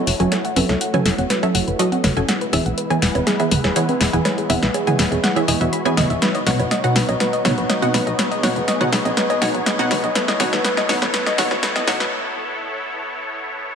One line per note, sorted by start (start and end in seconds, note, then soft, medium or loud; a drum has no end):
0.00 2.25 A3 medium
0.00 2.25 E4 medium
0.00 2.25 F#4 medium
0.00 2.25 C#5 medium
0.07 0.15 F#1 medium
0.07 0.12 F#5 medium
0.07 open hi-hat loud
0.07 high bongo soft
0.20 0.28 F#1 medium
0.20 0.34 F#3 medium
0.20 0.34 C#4 medium
0.20 0.34 F#4 medium
0.20 0.34 A4 medium
0.20 0.27 B4 medium
0.20 0.34 G#5 medium
0.20 closed hi-hat soft
0.32 0.37 A4 medium
0.32 snare medium
0.32 closed hi-hat medium
0.32 high bongo medium
0.45 0.49 F#5 medium
0.45 closed hi-hat soft
0.56 0.65 F#1 medium
0.56 0.71 F#3 medium
0.56 0.71 C#4 medium
0.56 0.71 F#4 medium
0.56 0.71 A4 medium
0.56 0.64 B4 medium
0.56 0.71 E5 medium
0.56 open hi-hat loud
0.56 high conga medium
0.69 0.77 C#2 medium
0.69 0.74 A4 medium
0.69 snare soft
0.69 closed hi-hat soft
0.69 high bongo soft
0.81 0.86 F#5 medium
0.81 closed hi-hat medium
0.94 1.07 F#3 medium
0.94 1.07 C#4 medium
0.94 1.07 F#4 medium
0.94 1.07 A4 medium
0.94 1.00 B4 medium
0.94 1.07 G#5 loud
0.94 closed hi-hat soft
0.94 mid tom medium
0.94 high bongo medium
1.05 1.14 F#1 medium
1.05 1.10 A4 medium
1.05 snare medium
1.05 open hi-hat loud
1.18 1.26 F#1 medium
1.18 1.23 F#5 medium
1.18 closed hi-hat soft
1.18 high bongo soft
1.18 high conga medium
1.30 1.37 B4 medium
1.30 snare medium
1.30 closed hi-hat medium
1.43 1.57 F#3 medium
1.43 1.57 C#4 medium
1.43 1.57 F#4 medium
1.43 1.47 A4 medium
1.43 1.57 A4 medium
1.43 1.57 E5 medium
1.43 closed hi-hat soft
1.43 high bongo medium
1.55 1.63 F#1 medium
1.55 1.60 F#5 medium
1.55 open hi-hat loud
1.67 1.75 F#1 medium
1.67 1.74 B4 medium
1.67 closed hi-hat soft
1.79 1.94 F#3 medium
1.79 1.94 C#4 medium
1.79 1.94 F#4 medium
1.79 1.84 A4 medium
1.79 1.94 A4 medium
1.79 1.94 D#5 loud
1.79 closed hi-hat medium
1.79 high bongo soft
1.92 1.96 F#5 medium
1.92 closed hi-hat soft
1.92 high conga medium
2.04 2.12 F#1 medium
2.04 2.11 B4 medium
2.04 snare medium
2.04 open hi-hat loud
2.04 mid tom medium
2.04 high bongo medium
2.17 2.24 F#1 medium
2.17 2.27 C#4 medium
2.17 2.27 F#4 medium
2.17 2.21 A4 medium
2.17 2.27 A4 medium
2.17 2.27 G#5 medium
2.17 closed hi-hat soft
2.28 6.18 G#3 medium
2.28 13.75 B3 medium
2.28 6.18 E4 medium
2.28 4.23 B4 medium
2.28 2.33 F#5 medium
2.28 snare medium
2.28 closed hi-hat medium
2.28 high bongo soft
2.41 2.48 B4 medium
2.41 closed hi-hat soft
2.53 2.61 E1 medium
2.53 2.68 E3 medium
2.53 2.68 B3 medium
2.53 2.68 E4 medium
2.53 2.58 G#4 medium
2.53 2.68 G#4 medium
2.53 2.68 E5 medium
2.53 open hi-hat loud
2.53 high bongo medium
2.53 high conga medium
2.66 2.73 B1 medium
2.66 2.70 F#5 medium
2.66 closed hi-hat soft
2.78 2.85 B4 medium
2.78 closed hi-hat medium
2.90 3.04 E3 medium
2.90 3.04 B3 medium
2.90 3.04 E4 medium
2.90 2.95 G#4 medium
2.90 3.04 G#4 medium
2.90 3.04 G#5 medium
2.90 closed hi-hat soft
2.90 high bongo soft
3.02 3.10 E1 medium
3.02 3.07 F#5 medium
3.02 snare medium
3.02 open hi-hat loud
3.15 3.23 E1 medium
3.15 3.22 B4 medium
3.15 closed hi-hat soft
3.15 high bongo medium
3.15 high conga medium
3.27 3.32 G#4 medium
3.27 snare medium
3.27 closed hi-hat medium
3.40 3.53 E3 medium
3.40 3.53 B3 medium
3.40 3.53 E4 medium
3.40 3.53 G#4 medium
3.40 3.53 E5 medium
3.40 3.44 F#5 medium
3.40 closed hi-hat soft
3.40 high bongo soft
3.51 3.60 E1 medium
3.51 3.59 B4 medium
3.51 open hi-hat loud
3.51 mid tom loud
3.64 3.72 E1 medium
3.64 3.69 G#4 medium
3.64 snare medium
3.64 closed hi-hat soft
3.64 high bongo medium
3.76 3.91 E3 medium
3.76 3.91 B3 medium
3.76 3.91 E4 medium
3.76 3.91 G#4 medium
3.76 3.91 C#5 loud
3.76 3.81 F#5 medium
3.76 closed hi-hat medium
3.89 3.95 B4 medium
3.89 closed hi-hat soft
3.89 high conga medium
4.00 4.09 E1 medium
4.00 4.05 G#4 medium
4.00 snare medium
4.00 open hi-hat loud
4.00 high bongo soft
4.13 4.21 E1 medium
4.13 4.27 E3 medium
4.13 4.27 B3 medium
4.13 4.27 E4 medium
4.13 4.27 G#4 medium
4.13 4.18 F#5 medium
4.13 4.27 G#5 medium
4.13 closed hi-hat soft
4.25 4.32 B4 medium
4.25 13.75 C#5 medium
4.25 snare medium
4.25 closed hi-hat medium
4.25 high bongo medium
4.38 4.42 G#4 medium
4.38 closed hi-hat soft
4.50 4.58 E1 medium
4.50 4.64 E3 medium
4.50 4.64 B3 medium
4.50 4.64 E4 medium
4.50 4.64 G#4 medium
4.50 4.64 E5 medium
4.50 4.55 F#5 medium
4.50 open hi-hat loud
4.50 high bongo soft
4.50 high conga medium
4.62 4.70 B1 medium
4.62 4.69 B4 medium
4.62 snare medium
4.62 closed hi-hat soft
4.74 4.79 G#4 medium
4.74 closed hi-hat medium
4.74 high bongo medium
4.87 5.01 E3 medium
4.87 5.01 B3 medium
4.87 5.01 E4 medium
4.87 5.01 G#4 medium
4.87 4.92 F#5 medium
4.87 5.01 G#5 loud
4.87 closed hi-hat soft
4.87 mid tom medium
4.99 5.07 E1 loud
4.99 5.06 B4 medium
4.99 snare medium
4.99 open hi-hat loud
5.12 5.19 E1 medium
5.12 5.16 G#4 medium
5.12 closed hi-hat soft
5.12 high bongo soft
5.12 high conga medium
5.23 5.28 F#5 medium
5.23 snare medium
5.23 closed hi-hat medium
5.36 5.46 E3 medium
5.36 5.46 B3 medium
5.36 5.46 E4 medium
5.36 5.46 G#4 medium
5.36 5.43 B4 medium
5.36 5.46 E5 medium
5.36 closed hi-hat soft
5.36 high bongo medium
5.48 5.56 E1 medium
5.48 5.59 E3 medium
5.48 5.59 B3 medium
5.48 5.59 E4 medium
5.48 5.59 G#4 medium
5.48 5.53 D#5 medium
5.48 5.59 G#5 medium
5.48 open hi-hat loud
5.61 5.68 E1 medium
5.61 5.75 E3 medium
5.61 5.75 B3 medium
5.61 5.75 E4 medium
5.61 5.64 F#4 medium
5.61 5.75 G#4 medium
5.61 5.75 E5 medium
5.61 closed hi-hat soft
5.61 high bongo soft
5.73 5.76 B5 medium
5.73 closed hi-hat medium
5.85 5.99 E3 loud
5.85 5.99 B3 medium
5.85 5.99 E4 medium
5.85 5.99 G#4 medium
5.85 5.99 G#5 loud
5.85 5.90 B5 medium
5.85 closed hi-hat soft
5.85 high bongo medium
5.85 high conga medium
5.97 6.05 E1 medium
5.97 6.04 D#5 loud
5.97 snare medium
5.97 open hi-hat loud
5.97 mid tom medium
6.10 6.18 E1 medium
6.10 6.17 E5 medium
6.10 closed hi-hat soft
6.22 10.11 D#4 medium
6.22 8.17 F#4 medium
6.22 6.29 B4 medium
6.22 snare medium
6.22 closed hi-hat medium
6.35 6.39 D#5 loud
6.35 closed hi-hat soft
6.35 high bongo soft
6.46 6.55 B1 medium
6.46 6.61 B2 medium
6.46 6.61 B3 medium
6.46 6.61 D#4 medium
6.46 6.61 F#4 medium
6.46 6.61 C#5 medium
6.46 6.51 F#5 medium
6.46 snare medium
6.46 open hi-hat loud
6.46 high conga medium
6.59 6.67 F#1 medium
6.59 6.66 B4 medium
6.59 closed hi-hat soft
6.59 high bongo medium
6.71 6.76 D#5 loud
6.71 snare medium
6.71 closed hi-hat medium
6.84 6.98 B2 medium
6.84 6.98 B3 medium
6.84 6.98 D#4 medium
6.84 6.98 F#4 medium
6.84 6.88 F#5 medium
6.84 6.98 F#5 medium
6.84 closed hi-hat soft
6.84 high bongo soft
6.96 7.04 B1 medium
6.96 7.03 B4 medium
6.96 snare medium
6.96 open hi-hat loud
7.08 7.16 B1 medium
7.08 7.13 D#5 loud
7.08 closed hi-hat soft
7.08 high bongo medium
7.08 high conga medium
7.20 7.27 B4 medium
7.20 snare medium
7.20 closed hi-hat medium
7.33 7.37 D#5 loud
7.33 closed hi-hat soft
7.45 7.53 B1 medium
7.45 7.59 B2 medium
7.45 7.60 B3 medium
7.45 7.59 D#4 medium
7.45 7.60 F#4 medium
7.45 7.59 C#5 medium
7.45 7.50 F#5 medium
7.45 snare medium
7.45 open hi-hat loud
7.45 mid tom loud
7.45 high bongo soft
7.58 7.65 B1 medium
7.58 7.64 B4 medium
7.58 closed hi-hat soft
7.69 7.74 D#5 loud
7.69 snare medium
7.69 closed hi-hat medium
7.69 high bongo medium
7.82 7.96 B2 medium
7.82 7.96 B3 medium
7.82 7.96 D#4 medium
7.82 7.96 F#4 medium
7.82 7.87 F#5 medium
7.82 7.96 F#5 medium
7.82 closed hi-hat soft
7.82 high conga medium
7.94 8.02 B1 medium
7.94 8.01 B4 medium
7.94 snare medium
7.94 open hi-hat loud
7.94 high bongo soft
8.07 8.14 B1 medium
8.07 8.11 D#5 loud
8.07 closed hi-hat soft
8.19 10.13 G#4 medium
8.19 8.26 B4 medium
8.19 snare medium
8.19 closed hi-hat medium
8.19 high bongo medium
8.31 8.36 D#5 loud
8.31 closed hi-hat soft
8.43 8.51 B1 medium
8.43 8.58 B2 medium
8.43 8.58 B3 medium
8.43 8.58 D#4 medium
8.43 8.58 F#4 medium
8.43 8.58 C#5 medium
8.43 8.48 F#5 medium
8.43 snare medium
8.43 open hi-hat loud
8.43 high conga medium
8.56 8.64 F#1 medium
8.56 8.63 B4 medium
8.56 closed hi-hat soft
8.56 high bongo soft
8.68 8.73 D#5 loud
8.68 snare medium
8.68 closed hi-hat medium
8.80 8.94 B2 medium
8.80 8.94 B3 medium
8.80 8.94 D#4 medium
8.80 8.94 F#4 medium
8.80 8.85 F#5 medium
8.80 8.94 F#5 medium
8.80 closed hi-hat soft
8.80 mid tom medium
8.80 high bongo medium
8.92 9.01 B1 loud
8.92 9.00 B4 medium
8.92 snare medium
8.92 open hi-hat loud
9.05 9.13 B1 medium
9.05 9.10 D#5 loud
9.05 closed hi-hat soft
9.05 high bongo soft
9.05 high conga medium
9.17 9.24 B4 medium
9.17 snare medium
9.17 closed hi-hat medium
9.30 9.34 D#5 loud
9.30 closed hi-hat soft
9.30 high bongo medium
9.42 9.50 B1 loud
9.42 9.56 B2 medium
9.42 9.56 B3 medium
9.42 9.56 D#4 medium
9.42 9.56 F#4 medium
9.42 9.56 C#5 medium
9.42 9.46 F#5 medium
9.42 snare medium
9.42 open hi-hat loud
9.54 9.62 B1 medium
9.54 9.61 B4 medium
9.54 closed hi-hat soft
9.66 9.71 D#5 medium
9.66 snare medium
9.66 closed hi-hat loud
9.66 high bongo soft
9.79 9.93 B2 medium
9.79 9.93 B3 medium
9.79 9.93 D#4 medium
9.79 9.93 F#4 medium
9.79 9.83 F#5 medium
9.79 9.93 F#5 loud
9.79 closed hi-hat soft
9.79 high conga medium
9.91 9.99 B1 medium
9.91 9.98 B4 medium
9.91 snare medium
9.91 open hi-hat loud
9.91 mid tom medium
9.91 high bongo medium
10.04 10.11 B1 medium
10.04 10.08 D#5 medium
10.04 closed hi-hat soft
10.15 13.75 E4 medium
10.15 13.75 A4 medium
10.15 10.23 B4 medium
10.15 snare medium
10.15 closed hi-hat medium
10.15 high bongo soft
10.28 10.33 D#5 loud
10.28 snare medium
10.28 closed hi-hat soft
10.40 10.48 A1 medium
10.40 10.55 B2 medium
10.40 10.55 B3 medium
10.40 10.55 D#4 medium
10.40 10.55 F#4 medium
10.40 10.55 C#5 medium
10.40 10.45 F#5 medium
10.40 snare medium
10.40 open hi-hat loud
10.40 high bongo medium
10.40 high conga medium
10.53 10.60 E2 medium
10.53 10.59 B4 medium
10.53 snare medium
10.53 closed hi-hat soft
10.64 10.72 B4 medium
10.64 snare medium
10.64 closed hi-hat medium
10.77 10.82 D#5 loud
10.77 snare medium
10.77 closed hi-hat soft
10.77 high bongo soft
10.89 10.97 A1 medium
10.89 11.04 B2 medium
10.89 11.04 B3 medium
10.89 11.04 D#4 medium
10.89 11.04 F#4 medium
10.89 11.04 C#5 medium
10.89 10.94 F#5 medium
10.89 snare loud
10.89 open hi-hat loud
11.02 11.09 A1 medium
11.02 11.09 B4 medium
11.02 snare medium
11.02 closed hi-hat soft
11.02 high bongo medium
11.02 high conga medium
11.14 11.21 B4 medium
11.14 snare loud
11.14 closed hi-hat medium
11.26 11.31 D#5 loud
11.26 snare medium
11.26 closed hi-hat soft
11.26 high bongo soft
11.38 11.46 A1 loud
11.38 11.53 B2 medium
11.38 11.53 B3 medium
11.38 11.53 D#4 medium
11.38 11.53 F#4 medium
11.38 11.53 C#5 loud
11.38 11.43 F#5 medium
11.38 snare loud
11.38 open hi-hat loud
11.38 mid tom loud
11.51 11.59 A1 medium
11.51 11.58 B4 medium
11.51 snare medium
11.51 closed hi-hat soft
11.51 high bongo medium
11.63 11.70 B4 medium
11.63 snare loud
11.63 closed hi-hat loud
11.76 11.80 D#5 loud
11.76 snare medium
11.76 closed hi-hat soft
11.76 high conga loud
11.87 11.96 A1 medium
11.87 12.02 B2 medium
11.87 12.02 B3 medium
11.87 12.02 D#4 medium
11.87 12.02 F#4 medium
11.87 12.02 C#5 medium
11.87 11.92 F#5 medium
11.87 snare medium
11.87 open hi-hat loud
11.87 high bongo soft
12.00 12.08 A1 medium
12.00 12.07 B4 medium
12.00 snare medium
12.00 closed hi-hat soft